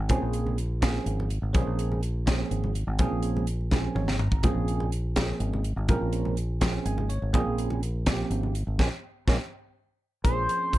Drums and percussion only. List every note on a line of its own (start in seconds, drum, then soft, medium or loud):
0.09 kick medium
0.09 closed hi-hat medium
0.09 high conga medium
0.09 low conga medium
0.33 closed hi-hat medium
0.47 low conga medium
0.58 closed hi-hat medium
0.82 kick medium
0.82 snare medium
0.82 closed hi-hat medium
0.82 high conga medium
0.82 low conga medium
1.06 closed hi-hat medium
1.20 low conga medium
1.30 closed hi-hat medium
1.30 low conga soft
1.44 low conga soft
1.54 kick loud
1.54 closed hi-hat medium
1.54 high conga medium
1.54 low conga medium
1.79 closed hi-hat medium
1.92 low conga medium
2.03 closed hi-hat medium
2.27 kick medium
2.27 snare loud
2.27 closed hi-hat medium
2.27 high conga medium
2.27 low conga medium
2.51 closed hi-hat medium
2.64 low conga medium
2.75 closed hi-hat medium
2.75 low conga soft
2.88 low conga soft
2.99 kick loud
2.99 closed hi-hat medium
2.99 high conga medium
2.99 low conga medium
3.23 closed hi-hat medium
3.36 low conga medium
3.47 closed hi-hat medium
3.61 low conga soft
3.71 kick medium
3.71 snare soft
3.71 high conga medium
3.71 low conga medium
3.85 low conga soft
3.96 mid tom medium
4.08 snare medium
4.08 low conga medium
4.19 floor tom medium
4.32 kick medium
4.43 kick medium
4.43 closed hi-hat medium
4.43 high conga medium
4.43 low conga medium
4.68 closed hi-hat soft
4.80 low conga medium
4.92 closed hi-hat medium
5.16 kick medium
5.16 snare loud
5.16 closed hi-hat medium
5.16 high conga medium
5.16 low conga medium
5.40 closed hi-hat medium
5.53 low conga medium
5.64 closed hi-hat medium
5.64 low conga soft
5.78 low conga soft
5.89 kick loud
5.89 closed hi-hat medium
5.89 high conga medium
5.89 low conga medium
6.13 closed hi-hat medium
6.25 low conga medium
6.37 closed hi-hat medium
6.61 kick medium
6.61 snare medium
6.61 closed hi-hat medium
6.61 high conga medium
6.61 low conga medium
6.86 closed hi-hat medium
6.98 low conga medium
7.10 closed hi-hat medium
7.10 low conga soft
7.22 low conga soft
7.34 kick loud
7.34 closed hi-hat medium
7.34 high conga medium
7.34 low conga medium
7.58 closed hi-hat medium
7.70 low conga medium
7.83 closed hi-hat medium
8.06 kick medium
8.06 snare medium
8.06 closed hi-hat medium
8.06 high conga medium
8.06 low conga medium
8.31 closed hi-hat soft
8.43 low conga medium
8.55 closed hi-hat medium
8.55 low conga soft
8.68 low conga soft
8.79 kick medium
8.79 snare medium
8.79 high conga medium
9.28 kick medium
9.28 snare medium
9.28 high conga medium
10.25 kick medium
10.25 closed hi-hat medium
10.49 closed hi-hat medium
10.73 kick medium
10.73 closed hi-hat medium